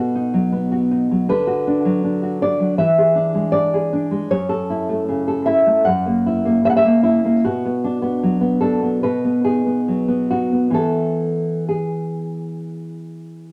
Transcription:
0.00 1.25 B2 medium
0.00 0.71 F#4 soft
0.00 0.48 A4 medium
0.15 0.90 D#4 soft
0.34 1.10 F#3 soft
0.52 1.29 B3 soft
0.72 1.29 F#4 soft
0.91 1.29 D#4 soft
1.11 1.30 F#3 soft
1.29 2.74 D3 medium
1.29 2.37 B4 medium
1.47 2.22 F#4 soft
1.67 2.03 D4 soft
1.85 2.58 F#3 soft
2.04 2.41 D4 soft
2.23 2.78 F#4 soft
2.42 2.78 D4 soft
2.42 2.77 D5 medium
2.60 2.78 F#3 soft
2.78 4.26 E3 medium
2.78 3.49 E5 medium
2.98 3.73 G#4 soft
3.15 3.52 D4 soft
3.34 4.10 G#3 soft
3.52 3.92 D4 soft
3.52 4.27 D5 medium
3.74 4.31 G#4 soft
3.93 4.31 D4 soft
4.11 4.30 G#3 soft
4.31 5.82 F#2 medium
4.31 5.43 C#5 medium
4.49 5.26 A4 medium
4.70 5.45 E4 soft
4.89 5.65 A3 soft
5.08 5.66 C#3 soft
5.28 5.86 A4 soft
5.46 5.86 E4 soft
5.46 5.84 E5 medium
5.67 5.86 A3 soft
5.85 6.64 F#2 medium
5.85 6.60 F#5 medium
6.06 6.44 A#3 soft
6.26 6.65 E4 soft
6.45 6.84 A#3 soft
6.64 7.44 C#3 soft
6.64 6.69 E5 medium
6.70 6.76 F#5 medium
6.77 7.02 E5 medium
6.85 7.23 A#3 soft
7.03 7.42 E4 medium
7.24 7.44 A#3 soft
7.45 9.00 B2 medium
7.45 8.59 F#4 medium
7.65 8.01 B3 soft
7.84 8.60 D4 soft
8.02 8.40 B3 soft
8.23 9.04 F#3 soft
8.41 8.81 B3 soft
8.61 9.03 D4 soft
8.61 9.01 A4 medium
8.83 9.03 B3 soft
9.03 10.73 B2 medium
9.03 9.43 B4 medium
9.24 9.65 B3 soft
9.44 10.30 D#4 soft
9.44 10.27 G#4 medium
9.66 10.07 B3 soft
9.88 10.77 F#3 soft
10.08 10.51 B3 soft
10.31 10.73 D#4 soft
10.31 10.74 F#4 medium
10.52 10.70 B3 soft
10.70 13.52 E3 soft
10.70 13.52 B3 soft
10.70 13.52 E4 soft
10.70 11.65 A4 medium
11.69 13.45 G#4 soft

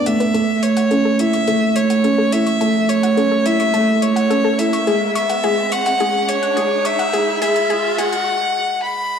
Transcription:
0.00 0.06 A3 medium
0.00 0.36 B3 medium
0.00 0.36 D4 medium
0.06 0.33 A3 medium
0.06 0.65 E5 medium
0.06 0.13 F#5 medium
0.06 closed hi-hat medium
0.20 0.31 B4 medium
0.20 closed hi-hat soft
0.34 0.51 A3 medium
0.34 0.45 A4 medium
0.34 closed hi-hat soft
0.34 riser medium
0.63 1.21 C#5 medium
0.63 0.73 C#6 medium
0.63 closed hi-hat medium
0.77 0.81 F#5 medium
0.77 closed hi-hat soft
0.77 mid tom medium
0.91 1.18 C#4 medium
0.91 1.02 A4 medium
0.91 closed hi-hat soft
1.05 1.16 A4 medium
1.19 1.45 E4 medium
1.19 1.77 E5 loud
1.19 closed hi-hat medium
1.33 1.44 C#6 medium
1.33 closed hi-hat soft
1.33 mid tom medium
1.47 1.64 A3 medium
1.47 1.58 A4 medium
1.47 closed hi-hat soft
1.76 2.34 C#5 medium
1.76 1.87 C#6 medium
1.76 closed hi-hat medium
1.90 1.94 F#5 medium
1.90 closed hi-hat soft
2.04 2.31 C#4 medium
2.04 2.15 A4 medium
2.04 closed hi-hat soft
2.18 2.29 A4 medium
2.32 2.59 E4 medium
2.32 2.90 E5 loud
2.32 closed hi-hat medium
2.46 2.57 C#6 medium
2.46 closed hi-hat soft
2.61 2.77 A3 medium
2.61 2.72 A4 medium
2.61 closed hi-hat soft
2.89 3.48 C#5 medium
2.89 3.00 C#6 medium
2.89 closed hi-hat medium
3.03 3.08 F#5 medium
3.03 closed hi-hat soft
3.03 mid tom medium
3.17 3.44 C#4 medium
3.17 3.28 A4 medium
3.17 closed hi-hat soft
3.32 3.42 A4 medium
3.46 3.72 E4 medium
3.46 4.04 E5 loud
3.46 closed hi-hat medium
3.60 3.71 C#6 medium
3.60 closed hi-hat soft
3.60 mid tom medium
3.74 3.90 A3 medium
3.74 3.85 A4 medium
3.74 closed hi-hat soft
4.02 4.61 C#5 loud
4.02 4.13 C#6 medium
4.02 closed hi-hat medium
4.16 4.21 F#5 medium
4.16 closed hi-hat soft
4.30 4.58 C#4 medium
4.30 4.41 A4 medium
4.30 closed hi-hat soft
4.44 4.55 A4 medium
4.59 4.85 E4 medium
4.59 5.15 E5 medium
4.59 closed hi-hat medium
4.73 4.84 C#6 medium
4.73 closed hi-hat soft
4.87 5.03 G#3 medium
4.87 4.98 G#4 medium
4.87 closed hi-hat soft
5.15 5.74 E5 loud
5.15 5.26 C#6 medium
5.15 closed hi-hat medium
5.30 5.34 F#5 medium
5.30 closed hi-hat soft
5.30 mid tom medium
5.44 5.60 G#3 medium
5.44 5.55 G#4 medium
5.44 closed hi-hat soft
5.72 6.30 F#5 loud
5.72 5.83 C#6 medium
5.72 closed hi-hat medium
5.86 5.91 F#5 medium
5.86 closed hi-hat soft
5.86 mid tom medium
6.00 6.16 G#3 medium
6.00 6.11 G#4 medium
6.00 closed hi-hat soft
6.29 6.87 C#5 loud
6.29 6.39 C#6 medium
6.29 closed hi-hat medium
6.42 6.47 F#5 medium
6.42 closed hi-hat soft
6.57 6.73 G#3 medium
6.57 6.68 G#4 medium
6.57 closed hi-hat soft
6.85 7.41 E5 loud
6.85 6.96 C#6 medium
6.85 closed hi-hat medium
6.99 7.04 F#5 medium
6.99 closed hi-hat soft
7.13 7.30 G#3 medium
7.13 7.24 G#4 medium
7.13 closed hi-hat soft
7.42 7.58 G#3 medium
7.42 7.53 G#4 medium
7.42 8.00 E5 loud
7.42 closed hi-hat medium
7.56 closed hi-hat soft
7.56 mid tom medium
7.70 7.86 G#3 medium
7.70 7.81 G#4 medium
7.70 closed hi-hat soft
7.98 8.15 G#3 medium
7.98 8.09 G#4 medium
7.98 8.83 F#5 loud
7.98 closed hi-hat medium
8.13 closed hi-hat soft
8.13 mid tom medium
8.83 9.19 B5 medium

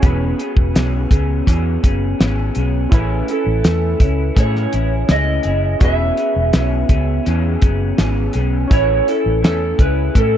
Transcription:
0.00 0.32 E1 loud
0.00 0.39 E3 medium
0.00 0.39 B3 medium
0.00 2.87 C#4 medium
0.00 2.87 F#4 medium
0.00 1.08 G#4 medium
0.00 2.88 G#4 medium
0.00 kick loud
0.00 closed hi-hat medium
0.04 0.39 C#4 medium
0.04 0.37 G#4 medium
0.04 2.89 B4 medium
0.38 0.74 B3 soft
0.38 0.75 C#4 soft
0.38 0.75 G#4 medium
0.38 closed hi-hat medium
0.57 0.71 E1 medium
0.57 kick medium
0.74 1.05 B1 medium
0.74 1.11 E3 medium
0.74 1.12 B3 medium
0.74 1.12 C#4 medium
0.74 1.10 G#4 medium
0.74 snare loud
0.74 closed hi-hat medium
1.11 1.40 C#2 medium
1.11 1.46 B3 soft
1.11 1.47 C#4 medium
1.11 1.47 G#4 medium
1.11 kick loud
1.11 closed hi-hat medium
1.46 1.76 E2 loud
1.46 1.83 E3 medium
1.46 1.84 B3 medium
1.46 1.84 C#4 medium
1.46 1.82 G#4 medium
1.46 kick medium
1.46 closed hi-hat medium
1.83 2.13 F#1 medium
1.83 2.20 B3 soft
1.83 2.21 C#4 medium
1.83 2.19 G#4 medium
1.83 kick medium
1.83 closed hi-hat medium
2.19 2.49 G#1 medium
2.19 2.56 E3 medium
2.19 2.57 B3 medium
2.19 2.57 C#4 medium
2.19 2.55 G#4 medium
2.19 snare loud
2.19 closed hi-hat medium
2.55 2.85 B1 medium
2.55 2.92 C#4 medium
2.55 2.92 G#4 medium
2.55 closed hi-hat medium
2.60 2.92 B3 soft
2.89 3.21 A1 medium
2.89 3.28 A3 medium
2.89 5.76 C#4 medium
2.89 3.29 C#4 medium
2.89 5.77 E4 medium
2.89 3.28 E4 medium
2.89 5.78 G#5 medium
2.89 kick loud
2.89 closed hi-hat medium
2.94 3.30 G#4 medium
2.94 5.78 B4 medium
3.28 3.63 C#4 soft
3.28 3.64 E4 soft
3.28 4.41 A4 medium
3.28 closed hi-hat medium
3.47 3.61 A1 medium
3.63 3.93 E2 medium
3.63 4.00 A3 medium
3.63 4.01 C#4 medium
3.63 4.00 E4 medium
3.63 snare loud
3.63 closed hi-hat medium
4.00 4.29 C#2 medium
4.00 4.35 C#4 soft
4.00 4.36 E4 soft
4.00 kick medium
4.00 closed hi-hat medium
4.35 4.66 A2 loud
4.35 4.72 A3 medium
4.35 4.73 C#4 medium
4.35 4.72 E4 medium
4.35 4.70 G#4 medium
4.35 kick medium
4.35 closed hi-hat medium
4.40 5.11 C#5 medium
4.56 snare soft
4.72 5.02 A1 medium
4.72 5.08 C#4 soft
4.72 5.09 E4 soft
4.72 5.08 G#4 medium
4.72 closed hi-hat medium
5.08 5.38 C#2 medium
5.08 5.45 A3 medium
5.08 5.45 C#4 medium
5.08 5.45 E4 medium
5.08 5.43 G#4 medium
5.08 5.84 D#5 medium
5.08 snare loud
5.08 closed hi-hat medium
5.43 5.74 F#1 medium
5.43 5.82 E4 medium
5.43 5.81 G#4 medium
5.43 closed hi-hat medium
5.48 5.81 C#4 soft
5.79 6.10 E1 medium
5.79 6.17 E3 medium
5.79 6.18 B3 medium
5.79 8.66 C#4 medium
5.79 6.17 C#4 medium
5.79 8.66 F#4 soft
5.79 8.67 G#4 medium
5.79 6.15 G#4 loud
5.79 kick loud
5.79 closed hi-hat medium
5.84 8.68 B4 medium
5.84 7.23 E5 loud
6.16 6.53 B3 soft
6.16 6.54 C#4 soft
6.16 6.53 G#4 soft
6.16 closed hi-hat medium
6.36 6.50 E1 medium
6.53 6.83 B1 medium
6.53 6.90 E3 medium
6.53 6.90 B3 medium
6.53 6.90 C#4 medium
6.53 6.88 G#4 medium
6.53 snare loud
6.53 closed hi-hat medium
6.89 7.18 C#2 medium
6.89 7.25 B3 medium
6.89 7.26 C#4 medium
6.89 7.26 G#4 medium
6.89 kick medium
6.89 closed hi-hat medium
7.26 7.55 E2 loud
7.26 7.62 E3 medium
7.26 7.62 B3 medium
7.26 7.63 C#4 medium
7.26 7.61 G#4 medium
7.26 closed hi-hat medium
7.62 7.91 F#1 medium
7.62 7.99 C#4 medium
7.62 7.98 G#4 medium
7.62 kick medium
7.62 closed hi-hat medium
7.66 7.98 B3 medium
7.97 8.28 G#1 medium
7.97 8.34 E3 medium
7.97 8.35 B3 medium
7.97 8.35 C#4 medium
7.97 8.33 G#4 medium
7.97 snare loud
7.97 closed hi-hat medium
8.33 8.64 B1 medium
8.33 8.69 C#4 medium
8.33 8.70 G#4 medium
8.33 closed hi-hat medium
8.38 8.69 B3 medium
8.68 9.00 A1 loud
8.68 9.06 A3 medium
8.68 10.38 C#4 medium
8.68 9.07 C#4 medium
8.68 10.38 E4 medium
8.68 9.07 E4 medium
8.68 10.38 G#5 medium
8.68 kick loud
8.68 closed hi-hat medium
8.72 9.08 G#4 medium
8.72 10.38 B4 medium
8.72 9.09 C#5 loud
9.08 9.43 C#4 soft
9.08 9.44 E4 medium
9.08 9.43 A4 medium
9.08 closed hi-hat medium
9.26 9.44 A1 medium
9.43 9.72 E2 medium
9.43 9.79 A3 medium
9.43 9.80 C#4 medium
9.43 9.79 E4 medium
9.43 9.81 A4 medium
9.43 snare loud
9.43 closed hi-hat medium
9.78 10.08 C#2 medium
9.78 10.14 C#4 soft
9.78 10.15 E4 medium
9.78 10.15 G#4 medium
9.78 10.17 B4 medium
9.78 kick medium
9.78 closed hi-hat medium
10.14 10.38 A2 loud
10.14 10.38 A3 medium
10.14 10.38 C#4 medium
10.14 10.38 E4 medium
10.14 10.38 A4 medium
10.14 kick medium
10.14 closed hi-hat medium

